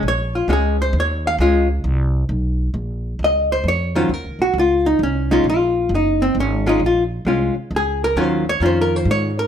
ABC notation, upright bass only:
X:1
M:3/4
L:1/8
Q:"Swing" 1/4=133
K:Bbm
V:1 name="Upright bass" clef=bass
B,,,2 D,,2 E,,2 | D,,2 C,,2 _C,,2 | B,,,2 D,,2 F,,2 | (3E,, D,, B,,, D,,2 C,,2 |
B,,,2 G,,,2 A,,,2 | B,,,2 C,, z D,,2 | E,,2 F,,2 A,,2 |]